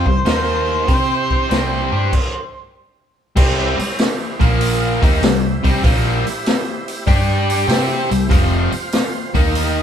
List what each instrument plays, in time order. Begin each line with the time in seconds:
Already playing: tonewheel organ C4 E4 G4 C5, harmonica C5
0.06 fingered electric bass C2, distorted electric guitar C3 G3, kick
0.25 fingered electric bass D#2, distorted electric guitar D#3 A#3 D#4, tonewheel organ A#3 D#4 A#4 D#5, snare, open hi-hat
0.88 fingered electric bass C3, distorted electric guitar C4 G4 C5, tonewheel organ C4 E4 G4 C5, kick, open hi-hat
1.31 kick
1.49 fingered electric bass C2, distorted electric guitar C3 G3 C4, snare, open hi-hat
1.92 fingered electric bass G2, distorted electric guitar G3 D4 G4
2.13 kick, crash
3.36 fingered electric bass C2, distorted electric guitar C3 G3 C4, tonewheel organ C4 E4 G4 C5, kick, crash
3.78 muted distorted electric guitar stroke, muted fingered electric bass stroke, open hi-hat
3.99 snare, open hi-hat
4.40 fingered electric bass A#1, distorted electric guitar A#2 F3 A#3, tonewheel organ A#3 F4 A#4 F5, kick, open hi-hat
4.61 open hi-hat
5.01 fingered electric bass D#2, distorted electric guitar D#3 A#3 D#4, tonewheel organ E4 G4 C5 E5, kick, open hi-hat
5.21 fingered electric bass C2, distorted electric guitar C3 G3, snare, open hi-hat
5.63 fingered electric bass C2, distorted electric guitar C3 G3 C4, kick, open hi-hat
5.83 fingered electric bass A#1, distorted electric guitar A#2 F3 A#3, kick, open hi-hat
6.27 open hi-hat
6.46 snare, open hi-hat
6.88 open hi-hat
7.06 fingered electric bass G2, distorted electric guitar G3 D4 G4, tonewheel organ D4 G4 D5 G5, kick, open hi-hat
7.50 open hi-hat
7.68 fingered electric bass C3, distorted electric guitar C4 G4 C5, tonewheel organ E4 G4 C5 E5, snare, open hi-hat
8.10 fingered electric bass C2, distorted electric guitar C3 G3, open hi-hat
8.29 fingered electric bass F1, distorted electric guitar F2 C3 F3, tonewheel organ C4 F4 C5 F5, kick, open hi-hat
8.72 muted distorted electric guitar stroke, muted fingered electric bass stroke, open hi-hat
8.92 snare, open hi-hat
9.34 fingered electric bass D#2, distorted electric guitar D#3 A#3 D#4, tonewheel organ A#3 D#4 A#4 D#5, kick, open hi-hat
9.55 open hi-hat